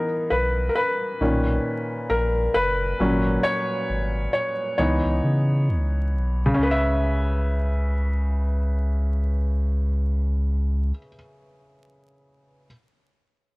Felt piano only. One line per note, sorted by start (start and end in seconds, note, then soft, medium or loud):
0.00 1.22 E3 medium
0.00 1.22 B3 medium
0.00 1.22 D#4 medium
0.00 0.28 A#4 medium
0.30 0.67 B4 medium
0.69 0.75 A#4 medium
0.75 2.14 B4 medium
1.21 2.96 A#2 soft
1.21 2.95 D#3 medium
1.21 2.96 C#4 medium
2.10 2.56 A#4 medium
2.54 3.47 B4 loud
3.00 4.30 A#2 medium
3.00 4.30 F#3 medium
3.00 4.30 C#4 medium
3.43 4.32 C#5 loud
4.33 4.43 C#5 medium
4.78 6.54 E3 medium
4.78 6.54 B3 soft
4.78 6.54 D#4 medium
4.78 5.64 C#5 medium
6.46 10.89 C#3 medium
6.54 10.98 C#4 medium
6.63 11.06 B4 medium
6.71 11.14 E5 medium